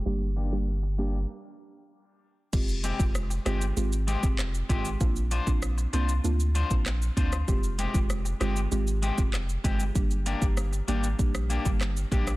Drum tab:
CC |----------------|x---------------|----------------|----------------|
HH |----------------|--x---x---x---x-|--x---x---x---x-|--x---x---x---x-|
SH |----------------|xxxxxxxxxxxxxxxx|xxxxxxxxxxxxxxxx|xxxxxxxxxxxxxxxx|
CP |----------------|------------x---|------------x---|------------x---|
SD |----------------|----r-r-----r---|----r-------r--r|----r-r-----r---|
BD |----------------|o--o-------o--o-|o--o-------o--o-|o--o-------o--o-|

CC |----------------|
HH |--x---x---x---x-|
SH |xxxxxxxxxxxxxxxx|
CP |------------x---|
SD |----r----r--r--r|
BD |o--o----o--o--o-|